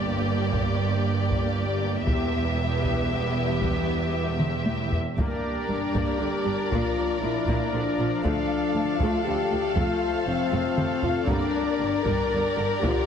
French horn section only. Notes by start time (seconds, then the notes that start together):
Already playing: G3 A#3
2.06 G3 B3
5.15 A#3
5.69 D4
6.19 G4
6.71 F4
7.20 E4
7.73 D4
8.23 D4
8.99 F4
9.24 G4
9.76 F4
10.27 C4
11.03 F4
11.26 D4
12.03 A#4
12.80 G4